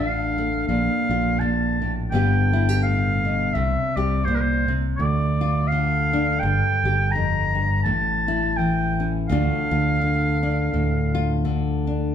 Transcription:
Already playing: A1 D2 D3 A3 D4 F4 F5
0.38 A3
0.68 A#1 A#2 F5
1.09 A#1 F4
1.39 A#2 A5
1.82 A2
2.11 G1 G2 D3 B3 F4 G5
2.15 G4
2.53 E4
2.69 G4
2.83 A2 F5
3.25 B2
3.54 C2 C3 E5
3.96 C2 G4 D5
4.25 A#2 C5
4.35 A#4
4.40 C5
4.68 C3
4.97 D2 D5
5.41 F4
5.68 F5
5.72 D3
6.13 D4
6.40 G1 G2 G5
6.84 G1 G4
7.11 A#5
7.16 F2
7.55 G2
7.84 A1 A2 A5
8.28 E4
8.57 E3 G5
9.00 C#4
9.28 D2 D3 A3 D4 F5
9.32 F4
9.71 D2 F4
10.02 D3
10.43 D4
10.74 D2 A2
11.15 F4
11.45 D3
11.87 D4

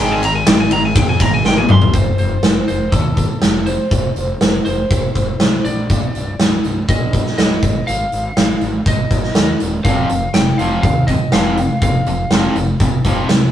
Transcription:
0.00 G#1 G#2 D#3 G#3 G5
0.12 G#5
0.23 G#2 D#3 A#5, ride
0.35 G#5
0.47 G#1 G#2 D#3 G5, snare, ride
0.60 G#5
0.71 G#2 D#3 A#5, ride
0.85 G#5
0.95 F2 G#2 D#3 G5, kick, ride
1.09 G#5
1.20 G#1 G#2 D#3 A#5, kick, ride
1.34 G#5
1.44 G#1 G#2 D#3 G5, snare
1.57 G#5, high tom
1.69 D#1 G#2 D#3 C6, mid tom
1.82 floor tom
1.93 F1 C5, kick, closed hi-hat
2.18 F1 C5, closed hi-hat
2.43 F1, snare, closed hi-hat
2.68 F1 C5, closed hi-hat
2.92 D#2 A4, kick, closed hi-hat
3.17 kick, closed hi-hat
3.42 F1, snare, closed hi-hat
3.66 C5, closed hi-hat
3.91 F1, kick, closed hi-hat
4.16 F1, closed hi-hat
4.41 F1, snare, closed hi-hat
4.65 F1 C5, closed hi-hat
4.91 F1, kick, closed hi-hat
5.15 F1, kick, closed hi-hat
5.40 C2, snare, closed hi-hat
5.65 A#1 D5, closed hi-hat
5.90 C1, kick, closed hi-hat
6.15 C1, closed hi-hat
6.40 C1, snare, closed hi-hat
6.64 C1, closed hi-hat
6.89 A#1 D#5, kick, closed hi-hat
7.13 kick, closed hi-hat
7.26 snare
7.38 C1 D#5, snare, closed hi-hat
7.63 G#1, kick, closed hi-hat
7.87 G#1 F5, closed hi-hat
8.12 G#1, closed hi-hat
8.37 G#1, snare, closed hi-hat
8.61 G#1, closed hi-hat
8.86 G#1 D#5, kick, closed hi-hat
9.11 G#1, kick, closed hi-hat
9.23 snare
9.35 D#2, snare, closed hi-hat
9.60 D#1, closed hi-hat
9.84 F1 F2 C3 F3 F5, kick, closed hi-hat
10.09 F1 F2 C3, closed hi-hat
10.34 F1 F2 C3 G5, snare, closed hi-hat
10.58 F1 F2 C3 F3 F5, closed hi-hat
10.82 D#2 F2 C3 F5, kick, closed hi-hat
11.07 F2 C3 D#5, kick, closed hi-hat
11.32 F1 F2 C3 F3 F5, snare, closed hi-hat
11.57 F2 C3, closed hi-hat
11.82 F1 F2 C3 F5, kick, closed hi-hat
12.06 F1 F2 C3, closed hi-hat
12.30 F1 F2 C3 F3, snare, closed hi-hat
12.56 F1 F2 C3, closed hi-hat
12.80 F1 F2 C3, kick, closed hi-hat
13.04 F1 F2 C3 F3, kick, closed hi-hat
13.29 C2 F2 C3, snare, closed hi-hat

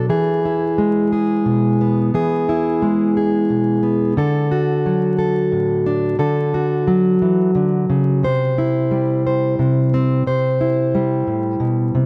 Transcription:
Already playing: F#3
0.09 E3 G#4
0.45 E4
0.78 G#3
1.13 G#4
1.46 B2
1.81 B3
2.14 E3 G#4
2.49 E4
2.82 G#3
3.17 G#4
3.50 B2
3.83 B3
4.17 D3 A4
4.51 F#4
4.86 F#3
5.19 A4
5.52 A2
5.86 D4
6.19 D3 A4
6.54 F#4
6.88 F#3
7.22 E3
7.55 D3
7.90 C#3
8.23 C3 C5
8.58 E4
8.91 G3
9.27 C5
9.59 C3
9.94 C4
10.27 C3 C5
10.61 E4
10.95 G3
11.27 A2
11.60 B2
11.95 C3

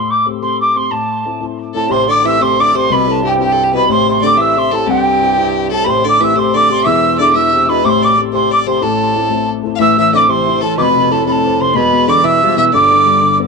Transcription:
Already playing: A2 C6
0.10 D6
0.26 A3 C4 G4
0.42 A3 C4 G4 C6
0.60 D6
0.75 A3 C4 G4 C6
0.90 A2 A5
1.25 A3 C4 E4
1.40 A3 C4 E4
1.74 A2 A3 C4 E4 A4 A5
1.89 A1 A2 C3 C5 C6
2.09 D3 D5 D6
2.24 E3 A3 C4 G4 E5 E6
2.40 C3 A3 C4 G4 C5 C6
2.59 D3 D5 D6
2.74 C3 A3 C4 G4 C5 C6
2.90 C2 B2 C3 B4 B5
3.06 A2 B5
3.11 A5
3.23 G2 C4 E4 G4
3.28 G5
3.38 G2 C4 E4 G4
3.43 G5
3.52 A4
3.63 G4
3.73 B2 C4 E4 G4 B4 B5
3.89 A1 A2 C3 C5 C6
4.08 C3 C6
4.22 D3 A3 C4 G4 D5 D6
4.37 E3 A3 C4 G4 E5 E6
4.56 C3 C6
4.72 A2 A3 C4 G4 A4 A5
4.87 C2 G2 C3 G4 G5
5.21 C4 E4 G4
5.37 C4 E4 G4
5.71 A2 C4 E4 G4 A4 A5
5.84 A1 A2 C3 C5 B5
5.89 C6
6.05 D3 D5 D6
6.20 E3 A3 C4 G4 E5 E6
6.36 C3 A3 C4 G4 C5 C6
6.54 D3 D5 D6
6.70 C3 A3 C4 G4 C6
6.84 E1 E2 E3 E5 E6
7.19 D3 G#3 D4 E4 D5 D6
7.33 E3 G#3 D4 E4 E5 E6
7.53 C3
7.68 B2 G#3 D4 E4 B4 B5
7.84 A1 A2 C3 C5 D6
7.88 C6
8.02 D5 D6
8.17 A3 C4 G4
8.33 C3 A3 C4 G4 C5 C6
8.51 D5 D6
8.66 C3 A3 C4 G4 C5 C6
8.82 A1 A2 A4 A5
9.16 A3 C4 E4
9.30 A3 C4 E4
9.63 A3 C4 E4
9.75 A1 E5 F5
9.80 A2 E3 E6
9.98 E3 E5 E6
10.13 D3 C4 D5 D6
10.28 C3 E3 C5 C6
10.46 E4
10.61 A2 E3 A4 A5
10.77 F1 F2 B2 B4 D6
10.81 B5
10.90 B2
10.96 C3
11.01 B2
11.10 A2 A3 A4 A5
11.26 A2 C3 A4 B5
11.31 A5
11.45 C4
11.60 C3 C5 C6
11.75 E1 E2 B2 B4 B5
11.93 B2
12.08 D3 E3 D5 D6
12.23 B2 E3 E5 E6
12.42 F3 G3
12.57 B2 E3 E5 E6
12.73 G1 G2 D3 D5 D6
12.91 D3
13.06 G3
13.22 D3
13.40 B3

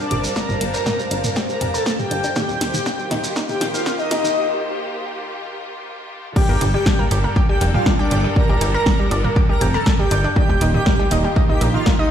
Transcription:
Already playing: G3 D4 A#4 C5 F5 A5
0.00 D4 D5
0.11 G1 G4, closed hi-hat, mid tom
0.24 G3, shekere
0.36 G3 A#4 A#5, kick, snare, shekere
0.49 G1 G3, mid tom, shekere
0.61 G1 G3, closed hi-hat
0.74 A#4 A#5, shekere
0.86 kick, snare, mid tom, shekere
0.99 G3, shekere
1.11 G1 D4, closed hi-hat
1.24 A#3, mid tom, shekere
1.36 G4, kick, snare, shekere
1.49 G3 A#4 A#5, shekere
1.61 F1 G4, closed hi-hat, mid tom
1.74 A4 A#4 A5, shekere
1.86 kick, snare, shekere
1.99 G3 G4 G5, mid tom, shekere
2.11 G1 D4, closed hi-hat
2.24 D4, shekere
2.36 D#3 A#3 F4 G4 A#4 G5, kick, snare, mid tom, shekere
2.49 D#1 G3, shekere
2.61 D#1 D#3, snare, closed hi-hat
2.74 D#3 G4 G5, mid tom, shekere
2.86 A#3, kick, snare, shekere
2.99 G3, shekere
3.11 D#1 D#4, snare, closed hi-hat, mid tom
3.24 G3, shekere
3.36 D#4, kick, snare, shekere
3.49 D#3 G4 G5, mid tom, shekere
3.61 A#1 D#3, snare, closed hi-hat
3.74 D#3 F4 F5, shekere
3.86 A#3, kick, snare, mid tom, shekere
3.99 D#4 D#5, shekere
4.11 D#1 D#4, snare, closed hi-hat
4.24 D#3, mid tom, shekere
6.36 G3 D4 G4 A4 A#4 G5, kick, crash
6.49 G1 A#3 A#4
6.61 G1 G3 G4, closed hi-hat, mid tom
6.74 G3 G4 G5
6.86 D4 D5, kick, snare
6.99 A#3 A#4, mid tom
7.11 G1 G4 G5, closed hi-hat
7.24 A#3 A#4
7.36 G4 G5, kick, mid tom
7.49 G3 G4 G5
7.61 F1 G3 G4, closed hi-hat
7.74 G3 F4 G4 F5, mid tom
7.86 D4 D5, kick, snare
7.99 D4 G4 D5 G5
8.11 G1 G4 G5, closed hi-hat, mid tom
8.24 G3 G4
8.36 G3 G4 A#4 A#5, kick
8.49 G1 G3 G4, mid tom
8.61 G1 G3 G4, closed hi-hat
8.74 A#4 A#5
8.86 kick, snare, mid tom
8.99 G3 G4
9.11 G1 D4 D5, closed hi-hat
9.24 A#3 A#4, mid tom
9.36 G4 G5, kick
9.49 G3 G4 A#4 A#5
9.61 F1 G4 G5, closed hi-hat, mid tom
9.74 A4 A#4 A5 A#5, snare
9.86 kick, snare
9.99 G3 G4 G5, mid tom
10.11 G1 D4 D5, closed hi-hat
10.24 D4 D5
10.36 D#3 A#3 D#4 F4 G4 G5, kick, mid tom
10.49 D#1 G3 G4
10.61 D#1 D#3 D#4, closed hi-hat
10.74 D#3 D#4 G4 G5, mid tom
10.86 A#3 A#4, kick, snare
10.99 G3 G4
11.11 D#1 D#4 D#5, closed hi-hat, mid tom
11.24 G3 G4
11.36 D#4 D#5, kick
11.49 D#3 D#4 G4 G5, mid tom
11.61 A#1 D#3 D#4, closed hi-hat
11.74 D#3 D#4 F4 F5
11.86 A#3 A#4, kick, snare, mid tom
11.99 D#4 D#5

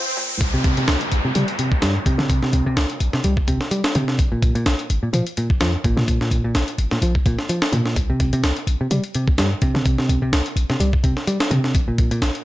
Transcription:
Already playing: riser, swell
0.17 A#2
0.41 C2, kick, closed hi-hat, downlifter
0.54 C3
0.64 C2, kick, closed hi-hat
0.77 C3, closed hi-hat
0.88 C2, snare, closed hi-hat
1.01 closed hi-hat
1.12 A#1, closed hi-hat
1.25 C3
1.35 C3 G3, closed hi-hat
1.48 closed hi-hat
1.59 C3, closed hi-hat
1.72 C2, kick
1.82 G2 G3, snare, closed hi-hat
2.06 A#1 C3, kick, closed hi-hat
2.18 C3, snare
2.30 kick, closed hi-hat
2.43 C3, snare
2.53 C2, closed hi-hat
2.66 C2 C3
2.77 C2, snare, closed hi-hat
2.90 closed hi-hat
3.00 A#1, closed hi-hat
3.13 C3, snare
3.24 C2 G3, closed hi-hat
3.37 kick
3.48 C2 C3, kick, closed hi-hat
3.61 snare
3.71 G3, closed hi-hat
3.84 snare
3.95 C3, closed hi-hat
4.08 snare
4.19 A#1, kick, closed hi-hat
4.32 A#2
4.42 A#1, kick, closed hi-hat
4.55 A#2, closed hi-hat
4.66 A#1, snare, closed hi-hat
4.79 closed hi-hat
4.90 G#1, closed hi-hat
5.03 A#2
5.13 A#2 F3, closed hi-hat
5.27 closed hi-hat
5.37 A#2, closed hi-hat
5.50 A#1, kick
5.60 F2 F3, snare, closed hi-hat
5.84 G#1 A#2, kick, closed hi-hat
5.97 A#2, snare
6.08 kick, closed hi-hat
6.21 A#2, snare
6.31 A#1, closed hi-hat
6.44 A#1 A#2
6.55 A#1, snare, closed hi-hat
6.68 closed hi-hat
6.78 G#1, closed hi-hat
6.91 A#2, snare
7.02 A#1 F3, closed hi-hat
7.15 kick
7.26 A#1 A#2, kick, closed hi-hat
7.39 snare
7.49 F3, closed hi-hat
7.62 snare
7.72 A#2, closed hi-hat
7.86 snare
7.96 C2, kick, closed hi-hat
8.10 C3
8.20 C2, kick, closed hi-hat
8.33 C3, closed hi-hat
8.44 C2, snare, closed hi-hat
8.57 closed hi-hat
8.67 A#1, closed hi-hat
8.81 C3
8.91 C3 G3, closed hi-hat
9.04 closed hi-hat
9.15 C3, closed hi-hat
9.28 C2, kick
9.38 G2 G3, snare, closed hi-hat
9.62 A#1 C3, kick, closed hi-hat
9.75 C3, snare
9.86 kick, closed hi-hat
9.98 C3, snare
10.09 C2, closed hi-hat
10.22 C2 C3
10.33 C2, snare, closed hi-hat
10.46 closed hi-hat
10.56 A#1, closed hi-hat
10.70 C3, snare
10.80 C2 G3, closed hi-hat
10.93 kick
11.04 C2 C3, kick, closed hi-hat
11.17 snare
11.27 G3, closed hi-hat
11.40 snare
11.51 C3, closed hi-hat
11.64 snare
11.75 A#1, kick, closed hi-hat
11.88 A#2
11.98 A#1, kick, closed hi-hat
12.11 A#2, closed hi-hat
12.22 A#1, snare, closed hi-hat
12.35 closed hi-hat

